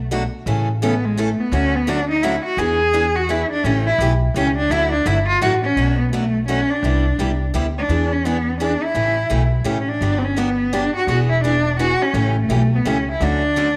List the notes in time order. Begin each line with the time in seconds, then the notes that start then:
Already playing: B1
0.11 B2 F#3 A3 D4 F#4
0.46 A1 C#3 E3 A3 C#4 A4
0.82 C#3 E3 A3 B3 C#4 A4
1.05 G#3
1.17 C#3 E3 A3 C#4 A4
1.40 B3
1.52 D2 D3 F#3 A3 C#4 F#4
1.75 B3
1.87 D3 F#3 A3 C#4 D4 F#4
2.10 D#4
2.23 D3 F#3 A3 C#4 E4 F#4
2.45 F#4
2.57 E2 E3 B3 D4 G#4
2.93 E3 B3 D4 G#4
3.16 F#4
3.29 E3 B3 D4 E4 G#4
3.51 D4
3.64 A1 C#3 E3 A3 C#4 G4
3.87 E4
3.98 B1 C#3 E3 A3 C#4 G4
4.34 C#2 C#3 E3 A3 C#4 G4
4.57 D4
4.70 D2 D3 F#3 A3 E4 F#4
4.92 D4
5.06 G1 D3 F#3 A3 E4 F#4
5.28 F4
5.41 A1 D3 F#3 A3 E4 F#4
5.63 C#4
5.76 B1 B2 F#3 A3 D4 F#4
5.98 B3
6.13 B2 F#3 A3 D4 F#4
6.48 B2 F#3 A3 C#4 D4 F#4
6.70 D4
6.83 C2 C3 G3 B3 E4 G4
7.19 C2 C3 G3 B3 E4 G4
7.54 D2 C3 G3 B3 E4 G4
7.78 D4
7.89 E2 E3 B3 D4 G#4
8.13 C#4
8.25 E3 B3 D4 G#4
8.60 E3 B3 D4 G#4
8.83 E4
8.94 A1 C#3 E3 A3 C#4 G4
9.30 B1 C#3 E3 A3 C#4 G4
9.64 A1 C#3 E3 A3 C#4 G4
9.80 C#4
9.89 D4
10.01 G1 D3 F#3 B3 D4 G4
10.18 C4
10.24 C#4
10.36 D3 F#3 B3 D4 G4
10.73 D3 F#3 B3 D4 G4
10.96 F#4
11.07 E1 E3 B3 D4 F#4 G#4
11.30 E4
11.44 E3 B3 D4 G#4
11.79 E3 B3 D4 F#4 G#4
12.02 C#4
12.13 A1 C#3 E3 A3 C#4 G4
12.40 A3
12.49 B1 C#3 E3 A3 C#4 G4
12.76 B3
12.85 C#2 C#3 E3 A3 C#4 G4
13.11 E4
13.20 D2 D3 F#3 A3 C#4 D4 F#4
13.56 D3 F#3 A3 C#4 F#4